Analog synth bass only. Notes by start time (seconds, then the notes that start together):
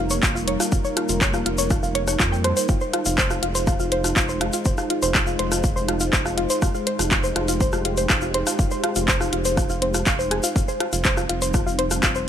Already playing: F1
0.23 F1
0.72 F1
1.09 F1
1.46 F1
1.83 F1
2.20 F2
2.69 F1
3.06 F1
3.43 F1
3.80 F1
4.16 F1
4.66 F1
5.02 F1
5.39 F1
5.76 F1
6.13 F1
6.62 F1
6.99 F1
7.36 F1
7.73 F1
8.10 F1
8.59 F1
8.96 F1
9.33 F1
9.70 F1
10.07 F1
10.56 F1
10.93 F1
11.29 F1
11.66 F1
12.03 F1